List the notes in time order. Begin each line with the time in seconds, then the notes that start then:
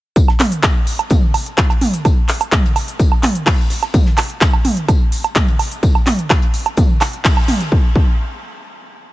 0.16 kick, closed hi-hat, tambourine
0.28 snare, low woodblock
0.40 clap, mid tom, open hi-hat, tambourine
0.52 closed hi-hat
0.63 kick, snare, clap, closed hi-hat, tambourine, low woodblock
0.87 open hi-hat, tambourine
0.99 closed hi-hat, low woodblock
1.10 kick, closed hi-hat, mid tom, tambourine
1.34 open hi-hat, tambourine, low woodblock
1.46 closed hi-hat
1.57 kick, snare, clap, closed hi-hat, tambourine
1.70 closed hi-hat, low woodblock
1.81 mid tom, open hi-hat, tambourine
1.94 closed hi-hat
2.05 kick, closed hi-hat, tambourine, low woodblock
2.29 clap, open hi-hat, tambourine
2.41 closed hi-hat, low woodblock
2.52 kick, snare, clap, closed hi-hat, mid tom, tambourine
2.66 closed hi-hat
2.76 open hi-hat, tambourine, low woodblock
2.88 closed hi-hat
2.99 kick, closed hi-hat, tambourine
3.12 low woodblock
3.23 snare, clap, mid tom, open hi-hat, tambourine
3.35 closed hi-hat
3.46 kick, snare, clap, closed hi-hat, open hi-hat, low woodblock
3.70 snare, open hi-hat, tambourine
3.82 snare, closed hi-hat, low woodblock
3.94 kick, closed hi-hat, mid tom, tambourine
4.06 snare
4.18 clap, open hi-hat, tambourine, low woodblock
4.30 closed hi-hat
4.41 kick, snare, clap, closed hi-hat, tambourine
4.53 low woodblock
4.65 mid tom, open hi-hat, tambourine
4.77 closed hi-hat
4.88 kick, closed hi-hat, tambourine, low woodblock
5.12 open hi-hat, tambourine
5.24 closed hi-hat, low woodblock
5.36 kick, snare, clap, closed hi-hat, mid tom, tambourine
5.48 closed hi-hat
5.59 open hi-hat, tambourine, low woodblock
5.72 closed hi-hat
5.83 kick, closed hi-hat, tambourine
5.95 low woodblock
6.06 clap, mid tom, open hi-hat, tambourine
6.19 closed hi-hat
6.30 kick, snare, clap, closed hi-hat, tambourine, low woodblock
6.42 closed hi-hat
6.54 open hi-hat, tambourine
6.66 closed hi-hat, low woodblock
6.77 kick, closed hi-hat, mid tom, tambourine
7.00 snare, clap, open hi-hat, tambourine, low woodblock
7.13 closed hi-hat
7.24 kick, snare, clap, closed hi-hat, open hi-hat
7.37 low woodblock
7.48 snare, mid tom, open hi-hat, tambourine
7.61 snare, closed hi-hat
7.72 kick
7.96 kick